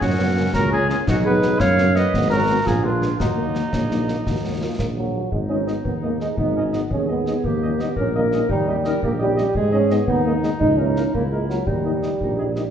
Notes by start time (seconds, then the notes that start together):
0.01 F#2 C#4 F#4, concert bass drum, snare
0.19 C#3 A#3 B3 C#4
0.35 C#3 A#3 C#4
0.54 C#2 C#4 F#4 A#4, concert bass drum, snare
0.71 C#3 A#3 C#4 F4 G#4
0.89 C#3 A#3 C#4 F4 G#4, snare
1.07 B1 D#4 F#4, concert bass drum, snare, crash
1.25 D#3 F#3 B3 G#4 B4
1.42 D#3 F#3 B3, snare
1.60 F#2 C#4 C#5 F5, concert bass drum, snare
1.78 D#3 F#3 B3, snare
1.96 D#3 F#3 B3 B4 D#5, snare
2.13 G#1 B3, concert bass drum, snare
2.30 D#3 G#3 B3 C#4 F#4 A#4
2.49 D#3 G#3 B3
2.66 A#1 F4 G#4, concert bass drum, snare
2.84 D3 G#3 B3 D4 F4
3.02 D3 G#3 B3, snare
3.19 D#2 A#3 D#4 F#4, concert bass drum, snare
3.37 D#3 F#3 A#3
3.55 D#3 F#3 A#3, snare
3.73 A#1 C#4, concert bass drum, snare
3.90 D#3 F#3 A#3 D#4, snare
4.08 D#3 F#3 A#3, snare
4.25 D#2 F#4, concert bass drum, snare
4.45 D#3 F#3 A#3
4.61 D#3 F#3 A#3 F4
4.78 A#1 A#3, concert bass drum, snare
4.97 D#3 F#3 A#3
5.15 D#3 F#3 A#3
5.31 G#1 G#3 D#4, concert bass drum
5.49 G#3 B3 C#4 D#4 D#5
5.66 G#3 B3 D#4 D#5, snare
5.85 D#2 B3, concert bass drum
6.02 G#3 A#3 B3 D#4 D#5
6.20 G#3 B3 D#4 D#5, snare
6.37 G#1 B3 D#4, concert bass drum
6.56 G#3 B3 C#4 D#4 D#5
6.72 G#3 B3 D#4 D#5, snare
6.91 D#2 C#4 G#4, concert bass drum
7.08 G#3 B3 D#4 D#5
7.26 G#3 B3 D#4 D#5, snare
7.43 D#2 A#3 G4, concert bass drum
7.62 G3 C#4 D#4 D#5
7.79 G3 B3 C#4 D#4 D#5, snare
7.96 A#1 C#4 A#4, concert bass drum
8.14 G3 A#3 C#4 D#4 D#5
8.32 G3 C#4 D#4 D#5, snare
8.49 D#2 G3 D#4, concert bass drum
8.66 G3 C#4 D#4 G4 D#5
8.84 G3 C#4 D#4 A#4 D#5, snare
9.03 A#1 A#3 G4, concert bass drum
9.18 G3 C#4 D#4 D#5
9.36 G3 C#4 D#4 D#5, snare
9.55 G#2 G#3 G#4, concert bass drum
9.71 G#3 B3 C#4 D#4 D#5
9.89 G#3 B3 D#4 D#5, snare
10.08 D#2 B3 D#4, concert bass drum
10.25 G#3 A#3 B3 D#4 D#5
10.42 G#3 B3 D#4 D#5, snare
10.60 C#2 D#4, concert bass drum
10.78 A#3 C#4 E4 A#4
10.96 A#3 E4 A#4, snare
11.14 C#2 A#3 E4, concert bass drum
11.31 G#3 A#3 E4 A#4
11.48 F#3 A#3 E4 A#4, snare
11.66 D#2 G3 D#4, concert bass drum
11.85 A#3 D#4 D#5
12.02 A#3 D#4 D#5, snare
12.19 A#1 D#4, concert bass drum
12.37 A#3 D#4 G#4 D#5
12.56 A#3 D#4 G4 D#5, snare